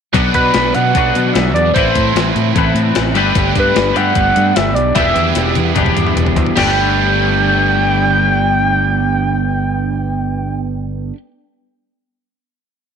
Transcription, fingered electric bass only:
0.14 B1
0.34 B2
0.55 B1
0.76 B2
0.95 B1
1.16 B2
1.35 B1
1.55 E2
1.76 A1
1.95 A2
2.15 A1
2.36 A2
2.56 A1
2.74 A2
2.96 A1
3.16 G1
3.36 G1
3.56 G2
3.76 G1
3.96 G2
4.16 G1
4.36 G2
4.57 G1
4.75 B1
4.96 E1
5.16 E2
5.36 E1
5.57 E2
5.76 E1
5.97 E2
6.16 E1
6.36 D2
6.57 G1

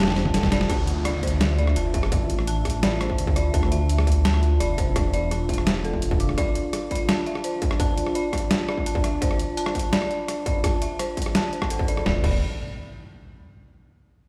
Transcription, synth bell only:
Already playing: C5 D5 E5
0.00 A5
0.17 C5
0.34 A4
0.52 D5
0.70 A5
1.05 D5
1.23 C5
1.59 D5
1.76 A5
1.94 E5
2.47 A5
2.83 D5
3.01 C5
3.36 D5
3.54 A5
3.71 E5
4.25 A5
4.60 D5
4.78 C5
5.14 D5
5.31 A5
5.49 E5
5.85 A4
6.20 D6
6.38 D5
6.91 D5
7.09 A5
7.27 E5
7.44 C5
7.80 A5
8.15 D5
8.69 D5
8.86 A5
9.04 E5
9.22 C5
9.57 A5
9.93 D5
10.46 D5
10.64 A5
10.82 E5
10.99 C5
11.35 A5
11.53 C5
11.71 A4
11.88 D5
12.06 D5
12.24 D5

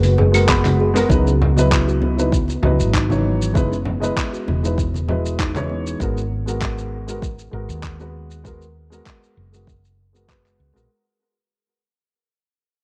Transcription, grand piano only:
0.32 G#3 B3 F#4 A#4
0.47 G#3 F#4 B5
0.94 G#3 B3 F#4 A#4
1.09 F#3 D#4 E4 B4
1.56 F#3 E4 B4 D#5
2.16 F#3 D#4 E4 B4
2.62 F#3 E4 B4 D#5
3.09 E3 F#3 D#4 C#5
3.54 G#3 D#4 E4 B4
4.00 G#3 E4 B4 D#5
4.63 G#3 D#4 E4 B4
5.08 G#3 E4 B4 D#5
5.54 E3 G#3 D#4 C#5
6.00 G#3 B3 F#4 A#4
6.46 G#3 B3 F#4 A#4
7.07 G#3 B3 F#4 A#4
7.51 G#3 B3 F#4 A#4
7.99 G#3 B3 F#4 B4
8.44 G#3 B3 F#4 A#4
8.90 G#3 B3 F#4 A#4
9.52 G#3 B3 F#4 A#4
10.13 G#3 B3 F#4 A#4
10.27 G#3 B3 F#4 B4
10.73 G#3 B3 F#4 A#4

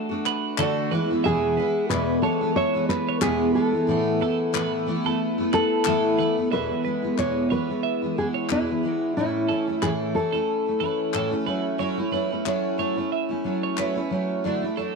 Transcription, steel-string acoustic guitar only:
Already playing: A3
0.09 A3 D4 F#4
0.58 D3 A3 D4 F#4
0.91 E3 G#3 B3 E4
1.11 E3 G#3 B3 E4
1.24 E2 B2 E3 G#3 B3 E4
1.57 E3 G#3 B3 E4
1.89 E2 B2 E3 G#3 B3 E4
2.22 E3 G#3 B3 E4
2.41 E3 G#3 B3 E4
2.74 E3 G#3 B3 E4
3.22 E2 B2 E3 G#3 B3 E4
3.54 E3 G#3 B3 E4
3.72 E3 G#3 B3 E4
3.87 A2 E3 A3 B3 E4
4.20 E3 A3 B3 E4
4.53 A2 E3 A3 B3 E4
4.86 E3 A3 B3 E4
5.04 A3 B3 E4
5.38 A3 B3 E4
5.86 A2 E3 A3 B3 E4
6.18 E3 A3 B3 E4
6.37 A3 B3 E4
6.51 E2 B2 E3 G#3 B3 E4
6.70 E3 G#3 B3 E4
6.84 E3 G#3 B3 E4
7.02 E3 G#3 B3 E4
7.17 E2 B2 E3 G#3 B3 E4
7.51 E3 G#3 B3 E4
7.69 E3 G#3 B3 E4
8.02 E3 G#3 B3 E4
8.17 E3 G#3 B3 E4
8.50 E2 B2 E3 G#3 B3 E4
8.68 E3 G#3 B3 E4
8.83 E3 G#3 B3 E4
9.17 A2 E3 A3 C#4 E4
9.49 E3 A3 C#4 E4
9.67 A3 C#4 E4
9.82 A2 E3 A3 C#4 E4
10.14 E3 A3 C#4 E4
10.33 A3 C#4 E4
10.66 A3 C#4 E4
10.80 E3 A3 C#4 E4
11.14 A2 E3 A3 C#4 E4
11.31 A3 C#4 E4
11.45 F#3 A3 C#4 E4
11.78 F#3 A3 C#4 E4
11.97 A3 C#4 E4
12.11 F#3 A3 C#4 E4
12.30 A3 C#4 E4
12.45 F#3 A3 C#4 E4
12.77 F#3 A3 C#4 E4
12.96 A3 C#4 E4
13.29 A3 C#4 E4
13.44 F#3 A3 C#4 E4
13.77 F#3 A3 C#4 E4
13.96 A3 C#4 E4
14.10 F#3 A3 C#4 E4
14.44 D3 F#3 A3 D4 E4
14.62 A3 D4 E4
14.77 F#3 A3 D4 E4

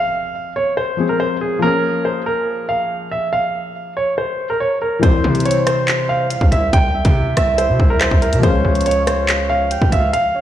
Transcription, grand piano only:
Already playing: F5
0.56 C#5
0.77 C5
1.09 A#4
1.20 C5
1.41 G#4
1.62 A#4
2.05 C5
2.26 A#4
2.69 F5
3.11 E5
3.33 F5
3.97 C#5
4.18 C5
4.50 A#4
4.60 C#5
4.82 A#4
5.03 C5
5.45 C#5
5.67 C5
6.09 F5
6.52 E5
6.73 G5
7.37 E5
7.58 C5
7.90 A#4
8.01 C5
8.22 A#4
8.43 C5
8.86 C#5
9.07 C5
9.50 F5
9.92 E5
10.13 F5

